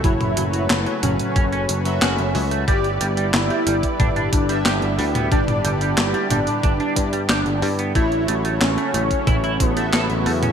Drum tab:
HH |xxxxxxxxxxxxxxox|xxxxxxxxxxxxxxox|xxxxxxxxxxxxxxox|xxxxxxxxxxxxxxox|
CP |----x-------x---|----x-------x---|----x-------x---|----x-------x---|
SD |----o-------o---|----o-------o---|----o-------o---|----o-------o---|
T2 |-o----o---------|--------o------o|-o----o---------|--------o------o|
BD |o-------o-------|o------oo-o-----|o-------o-o-----|o------oo-o-----|